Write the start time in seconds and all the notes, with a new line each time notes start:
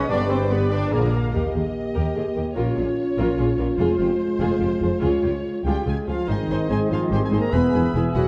Already playing: B1
0.08 G1 D3 G3 B3 D4 G4 B4 D5 B5
0.29 C4 B4 C5 G5 D6
0.49 B3 G4 B4 D5 B5
0.70 D4 B4 D5 G5 D6
0.92 A#1 D3 F3 A#3 G#4 A#4 D5 G#5 A#5
1.13 A#4 F5 A#5
1.34 D#2 A#3 G4 A#4 D#5
1.54 D#2 G4 G#4
1.94 D#2 G4 A#4
2.15 D#2 G4 G#4
2.36 D#2 G4 A#4
2.56 A#1 A#2 C#4 F4 A#4 C#5
2.77 A#1 A#2 F4 G#4
3.18 A#1 A#2 F4 A#4
3.39 A#1 A#2 F4 G#4
3.59 A#1 A#2 F4 A#4
3.78 F1 F2 G#3 F4 G#4 C5
3.98 F1 F2 F4 G4
4.40 F1 F2 F4 G#4
4.60 F1 F2 F4 G4
4.80 F1 F2 F4 G#4
5.00 C#2 F4 G#4 C#5
5.22 C#2 F4 G4
5.63 C#2 G3 F4 G4 G#4 G5
5.86 C#2 G#3 F4 G4 G#4 G#5
6.06 C#2 F3 F4 G#4 F5
6.28 G#1 G#2 D#3 C4 D#4 G#4 C5 D#5 G#5 C6
6.49 G#1 G#2 D#4 C5 G#5 C6
6.70 G#1 G#2 G#3 D#4 G#4 C5 G#5 C6
6.90 G#1 G#2 F3 D#4 F4 C5 F5 G#5 C6
7.10 G#1 G#2 G3 D#4 G4 C5 G5 G#5 C6
7.24 G#3 G#4 G#5
7.32 G#1 G#2 D#4 C5 G#5 C6
7.39 A#3 A#4 A#5
7.51 E1 E2 E3 B3 E4 G#4 B4 E5 G#5 B5
7.55 B5
7.73 E1 E2 E4 G#4 G#5 B5
7.94 E1 E2 E4 G#4 G#5 B5
8.14 E1 E2 F#3 E4 F#4 G#4 F#5 G#5 B5